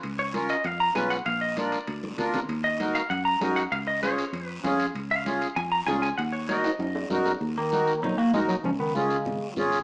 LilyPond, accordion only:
\new Staff \with { instrumentName = "Accordion" } { \time 4/4 \key ees \minor \tempo 4 = 195 r4 <des' f' bes'>8 r4. <des' f' ces''>8 r8 | r4 <d' f' bes'>8 r4. <d' f' bes'>8 r8 | r4 <ees' ges' bes'>8 r4. <ees' ges' bes'>8 r8 | r4 <des' f' aes'>8 r4. <des' f' aes'>8 r8 |
r4 <des' f' aes'>8 r4. <des' f' aes'>8 r8 | r4 <ees' ges' bes'>8 r4. <ees' ges' bes'>8 r8 | r4 <ees' ges' bes'>8 r4. <ees' ges' bes'>8 r8 | r4 <des' f' aes'>8 r4. <des' f' aes'>8 r8 | }